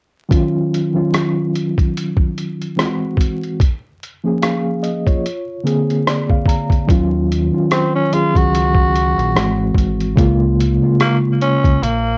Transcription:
0.29 0.78 D#3 loud
0.29 0.79 F#3 medium
0.29 0.79 C#4 medium
0.29 0.80 F4 loud
0.29 kick loud
0.29 closed hi-hat medium
0.74 closed hi-hat medium
0.94 2.21 D#3 medium
0.94 2.21 F#3 medium
0.94 2.22 C#4 medium
0.94 2.22 F4 medium
1.14 cross-stick medium
1.14 closed hi-hat medium
1.55 closed hi-hat medium
1.78 kick medium
1.78 closed hi-hat soft
1.97 closed hi-hat medium
2.17 kick medium
2.38 closed hi-hat medium
2.62 closed hi-hat soft
2.76 3.45 E3 medium
2.76 3.45 G#3 medium
2.76 3.45 C4 medium
2.76 2.85 F4 medium
2.76 cross-stick loud
2.76 closed hi-hat medium
2.85 3.49 F#4 medium
3.17 kick medium
3.17 closed hi-hat medium
3.43 closed hi-hat soft
3.60 kick loud
3.60 closed hi-hat medium
4.03 closed hi-hat medium
4.23 5.24 F3 medium
4.23 5.24 A#3 medium
4.23 5.25 C#4 medium
4.23 4.41 G#4 medium
4.42 4.81 G#4 medium
4.42 4.81 F5 medium
4.42 cross-stick medium
4.42 closed hi-hat medium
4.82 5.05 D#5 medium
4.82 closed hi-hat medium
5.06 5.45 F4 medium
5.06 5.45 C#5 medium
5.06 kick medium
5.06 closed hi-hat soft
5.26 closed hi-hat medium
5.63 6.61 D3 medium
5.63 6.61 A#3 medium
5.63 6.62 C4 medium
5.63 6.62 G#4 medium
5.63 closed hi-hat medium
5.90 closed hi-hat soft
6.07 6.29 D5 medium
6.07 cross-stick loud
6.07 closed hi-hat medium
6.30 6.47 F5 medium
6.30 kick medium
6.46 6.86 A#5 medium
6.46 kick medium
6.46 closed hi-hat medium
6.70 kick medium
6.70 closed hi-hat soft
6.87 7.49 D#2 loud
6.87 7.36 D#3 loud
6.87 7.37 F#3 medium
6.87 7.37 C#4 medium
6.87 7.38 F4 loud
6.87 kick loud
6.87 closed hi-hat medium
7.32 closed hi-hat medium
7.52 7.99 D#3 medium
7.52 7.99 F#3 medium
7.52 8.00 C#4 medium
7.52 8.00 F4 medium
7.71 7.93 C4 medium
7.71 cross-stick medium
7.71 closed hi-hat medium
7.95 8.15 C#4 medium
8.11 9.35 D#3 medium
8.11 9.35 F#3 medium
8.11 9.36 C#4 medium
8.11 8.38 F4 medium
8.11 9.36 G#4 medium
8.11 closed hi-hat medium
8.35 9.13 C#2 medium
8.35 9.77 F#4 medium
8.35 kick medium
8.35 closed hi-hat soft
8.55 closed hi-hat medium
8.74 kick medium
8.95 closed hi-hat medium
9.17 9.34 A#1 medium
9.17 closed hi-hat soft
9.34 9.73 G#1 medium
9.34 10.02 E3 medium
9.34 10.03 G#3 medium
9.34 10.03 C4 medium
9.34 10.04 F#4 loud
9.34 cross-stick loud
9.34 closed hi-hat medium
9.75 10.13 G#1 medium
9.75 kick medium
9.75 closed hi-hat medium
10.01 closed hi-hat soft
10.16 10.78 C#2 medium
10.16 10.65 C#3 loud
10.16 10.65 G#3 loud
10.16 10.66 A#3 loud
10.16 10.66 F4 loud
10.16 kick loud
10.16 closed hi-hat medium
10.60 closed hi-hat medium
10.81 11.81 C#3 medium
10.81 11.82 G#3 medium
10.81 11.82 A#3 medium
10.81 11.83 F4 medium
11.00 11.17 A#3 medium
11.00 cross-stick medium
11.00 closed hi-hat medium
11.41 11.85 C#4 loud
11.41 closed hi-hat medium
11.64 11.80 C#2 medium
11.64 kick medium
11.64 closed hi-hat soft
11.82 12.18 A#1 loud
11.82 12.18 A#3 medium
11.82 closed hi-hat medium

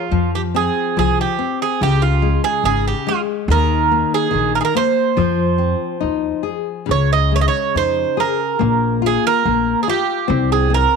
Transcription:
0.00 0.30 F4 medium
0.11 0.67 F2 medium
0.11 0.96 F3 medium
0.35 0.41 G4 medium
0.55 0.96 C4 soft
0.55 0.98 G#4 medium
0.97 1.24 C2 medium
0.97 1.38 F3 soft
0.97 1.18 G#4 medium
1.21 1.59 G4 medium
1.39 1.79 C4 medium
1.62 1.80 G#4 medium
1.81 2.35 C#2 medium
1.81 2.64 C#3 medium
1.81 2.01 G4 medium
2.02 2.41 F4 medium
2.22 2.63 G#3 soft
2.44 2.64 G#4 medium
2.64 2.91 G#1 medium
2.64 3.06 C#3 medium
2.64 2.87 G#4 medium
2.87 3.08 G4 medium
3.07 3.47 G#3 medium
3.07 3.20 F4 medium
3.48 4.03 D#2 loud
3.48 4.30 D#3 medium
3.48 4.14 A#4 medium
3.92 4.31 A#3 soft
4.14 4.52 G#4 medium
4.31 4.60 A#1 medium
4.31 4.72 D#3 medium
4.55 4.59 A#4 medium
4.61 4.64 G#4 medium
4.65 4.74 A#4 medium
4.75 5.16 A#3 medium
4.75 6.43 C5 medium
5.17 5.73 F2 medium
5.17 6.85 F3 medium
5.58 6.00 C4 soft
6.00 6.31 D#2 medium
6.00 6.43 D#4 soft
6.43 6.86 G#4 soft
6.86 7.45 C#2 medium
6.86 8.56 C#3 medium
6.91 7.12 C#5 medium
7.13 7.34 D#5 medium
7.32 7.74 G#3 soft
7.32 7.41 C#5 medium
7.41 7.47 D#5 medium
7.48 7.77 C#5 medium
7.75 8.03 F2 medium
7.75 8.17 D#4 soft
7.75 8.20 C5 medium
8.17 8.59 G#4 soft
8.17 9.00 A#4 medium
8.59 9.16 A#1 loud
8.59 9.44 A#3 medium
9.02 9.44 F4 soft
9.06 9.26 G#4 medium
9.27 9.82 A#4 medium
9.45 9.73 A#1 medium
9.45 9.86 A#3 medium
9.83 9.89 G#4 medium
9.88 10.28 F4 medium
9.88 10.52 G4 medium
10.28 10.84 C2 loud
10.28 10.69 C4 medium
10.52 10.73 G#4 medium
10.70 10.96 C4 soft
10.74 10.96 A#4 medium

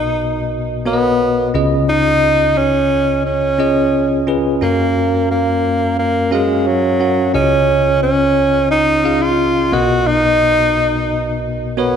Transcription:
0.00 1.51 B1 medium
0.00 1.51 B2 medium
0.00 0.86 B3 medium
0.00 0.53 D#4 loud
0.00 0.86 F#4 medium
0.00 0.86 A#4 medium
0.00 0.93 D#5 medium
0.86 1.44 B3 medium
0.86 1.51 B3 loud
0.86 1.45 F#4 medium
0.86 1.45 A#4 medium
0.86 0.93 C#5 medium
0.93 1.48 D#5 medium
1.54 4.23 C#2 medium
1.54 4.23 C#3 medium
1.54 2.71 C#4 medium
1.54 2.71 F4 medium
1.54 2.71 G#4 medium
1.54 2.72 D#5 medium
1.89 2.59 D#4 loud
2.57 3.25 C#4 medium
3.25 4.23 C#4 medium
3.59 4.17 C#4 medium
3.59 4.17 F4 medium
3.59 4.18 G#4 medium
3.59 4.18 D#5 medium
4.27 4.56 C#4 medium
4.27 4.57 F4 medium
4.27 4.57 G#4 medium
4.27 4.57 B4 medium
4.61 7.30 F#2 medium
4.61 5.26 A#3 medium
4.61 5.78 C#4 medium
4.61 5.78 F#4 medium
4.61 5.78 A#4 medium
4.61 5.78 F5 medium
5.31 5.94 A#3 medium
5.99 6.30 A#3 medium
6.31 6.68 G#3 medium
6.31 6.90 C#4 medium
6.31 6.90 F#4 medium
6.31 6.90 A#4 medium
6.31 6.91 F5 medium
6.67 7.34 F#3 medium
7.00 7.29 C#4 medium
7.00 7.29 F#4 soft
7.00 7.29 A#4 medium
7.00 7.30 F#5 medium
7.34 9.69 C#2 medium
7.34 9.69 C#3 medium
7.34 8.50 C#4 medium
7.34 7.99 C#4 medium
7.34 7.41 E4 soft
7.34 8.51 G#4 medium
7.34 8.51 D#5 medium
7.40 8.54 F4 medium
8.03 8.67 C#4 medium
8.71 9.23 D#4 loud
9.04 9.63 C#4 medium
9.04 9.63 F4 medium
9.04 9.63 G#4 medium
9.04 9.63 F5 medium
9.22 9.75 F4 loud
9.72 11.96 B1 medium
9.72 11.96 B2 medium
9.72 10.89 B3 medium
9.72 10.89 F#4 medium
9.72 10.08 F#4 medium
9.72 10.90 A#4 medium
9.72 10.90 D#5 medium
10.07 11.43 D#4 loud
11.77 11.96 B3 medium
11.77 11.96 F#4 medium
11.77 11.96 A#4 medium
11.77 11.96 C#5 medium

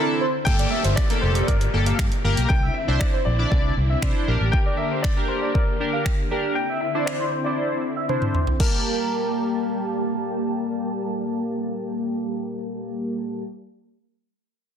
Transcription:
0.00 0.44 D3 medium
0.00 0.24 C4 medium
0.00 0.44 C4 medium
0.00 0.24 D4 medium
0.00 0.24 E4 medium
0.00 0.44 E4 medium
0.00 0.25 A4 medium
0.21 0.30 C5 medium
0.45 0.64 G1 loud
0.45 2.48 A#2 medium
0.45 0.82 A#3 medium
0.45 2.48 A#3 medium
0.45 2.48 G4 medium
0.45 0.82 G4 medium
0.45 0.83 A4 medium
0.45 0.72 G5 loud
0.45 kick loud
0.45 closed hi-hat medium
0.45 downlifter medium
0.59 0.68 D5 medium
0.59 closed hi-hat medium
0.70 0.97 E5 medium
0.84 0.94 G1 medium
0.84 0.93 C5 medium
0.84 closed hi-hat soft
0.96 1.23 D5 medium
0.96 finger snap loud
0.96 kick loud
0.96 closed hi-hat medium
1.10 1.46 A#3 medium
1.10 1.46 G4 medium
1.10 1.46 A4 medium
1.10 1.19 A#4 medium
1.10 closed hi-hat medium
1.21 1.40 F1 medium
1.21 1.46 C5 medium
1.35 1.44 D5 medium
1.35 closed hi-hat medium
1.46 1.66 G1 medium
1.46 2.20 A#4 medium
1.46 1.57 D5 medium
1.46 kick medium
1.46 closed hi-hat medium
1.61 closed hi-hat soft
1.73 1.91 G1 medium
1.73 2.02 A#3 medium
1.73 2.02 G4 medium
1.73 2.02 A4 medium
1.86 2.04 F5 medium
1.86 closed hi-hat medium
1.99 2.08 G2 loud
1.99 finger snap loud
1.99 kick loud
1.99 closed hi-hat medium
2.12 closed hi-hat soft
2.24 2.33 G1 medium
2.24 2.50 A#3 loud
2.24 2.50 G4 medium
2.24 2.50 A#4 loud
2.37 2.46 B1 medium
2.37 closed hi-hat medium
2.49 2.67 C2 loud
2.49 8.56 D3 medium
2.49 4.26 C4 medium
2.49 4.26 E4 medium
2.49 2.75 G5 loud
2.49 kick loud
2.63 2.71 E5 medium
2.74 3.01 E5 medium
2.88 2.97 C2 medium
2.88 3.17 D4 medium
2.88 3.17 E4 medium
2.88 3.17 C5 medium
2.88 2.97 D5 medium
3.00 3.05 D5 medium
3.00 finger snap loud
3.00 kick loud
3.14 3.22 C5 medium
3.25 3.44 A#1 medium
3.25 3.49 D5 medium
3.39 3.75 D4 medium
3.39 3.75 E4 medium
3.39 3.47 D5 medium
3.39 3.75 D5 medium
3.50 3.69 C2 medium
3.50 4.23 D5 medium
3.50 3.60 D5 medium
3.50 kick medium
3.77 3.95 C2 medium
3.90 3.98 E5 medium
4.02 4.11 C3 loud
4.02 4.26 D4 medium
4.02 4.28 E4 medium
4.02 4.28 C5 medium
4.02 4.38 D5 medium
4.02 finger snap loud
4.02 kick loud
4.28 4.37 A#1 medium
4.28 6.54 A#3 medium
4.28 4.99 D4 medium
4.28 4.99 G4 medium
4.28 6.54 G4 medium
4.28 4.99 A#4 medium
4.41 4.49 A1 medium
4.52 4.58 G5 loud
4.52 kick loud
4.66 4.74 D5 medium
4.77 5.04 E5 medium
4.91 5.00 C5 medium
5.02 5.27 D5 medium
5.02 finger snap loud
5.02 kick loud
5.17 5.53 D4 medium
5.17 5.53 G4 medium
5.17 5.25 A#4 medium
5.17 5.53 A#4 medium
5.28 5.55 C5 medium
5.42 5.51 D5 medium
5.53 6.26 A#4 medium
5.53 5.63 D5 medium
5.53 kick loud
5.80 6.09 D4 medium
5.80 6.09 G4 medium
5.80 6.09 A#4 medium
5.93 6.10 F5 medium
6.06 finger snap loud
6.06 kick loud
6.31 6.57 D4 loud
6.31 6.57 G4 medium
6.31 6.57 A#4 loud
6.55 8.58 C4 medium
6.55 8.58 E4 medium
6.55 6.82 G5 loud
6.69 6.78 E5 medium
6.81 7.08 E5 medium
6.95 7.24 D4 medium
6.95 7.24 E4 medium
6.95 7.24 C5 loud
6.95 7.03 D5 medium
7.06 7.30 D5 medium
7.06 finger snap loud
7.20 7.29 C5 medium
7.32 7.45 C5 medium
7.44 7.82 D4 medium
7.44 7.82 E4 medium
7.44 7.82 C5 medium
7.44 8.05 D5 medium
7.44 7.54 D5 medium
7.58 7.67 D5 medium
7.97 8.05 E5 medium
8.09 8.38 D4 medium
8.09 8.38 E4 medium
8.09 8.18 C5 medium
8.09 8.38 C5 medium
8.09 high tom medium
8.22 mid tom medium
8.35 8.43 C5 medium
8.35 mid tom medium
8.47 floor tom medium
8.60 13.43 G3 medium
8.60 13.43 A#3 medium
8.60 13.43 G4 medium
8.60 10.09 A#4 loud
8.60 13.55 A#4 medium
8.60 13.43 A5 medium
8.60 kick loud
8.60 crash medium

